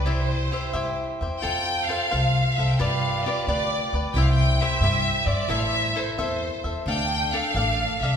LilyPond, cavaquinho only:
\new Staff \with { instrumentName = "Cavaquinho" } { \time 6/8 \key c \major \tempo 4. = 88 <e' g' c'' e''>4 <e' g' c'' e''>8 <e' g' c'' e''>4 <g' c'' e''>8 | \key f \major <f' a' c'' f''>4 <f' a' c'' f''>8 <f' a' c'' f''>4 <a' c'' f''>8 | <f' g' b' d''>4 <f' g' b' d''>8 <f' g' b' d''>4 <g' b' d''>8 | <e' g' c'' e''>4 <e' g' c'' e''>8 <e' g' c'' e''>4 <g' c'' e''>8 |
<e' a' c'' e''>4 <e' a' c'' e''>8 <e' a' c'' e''>4 <a' c'' e''>8 | <d' a' d'' f''>4 <d' a' d'' f''>8 <d' a' d'' f''>4 <a' d'' f''>8 | }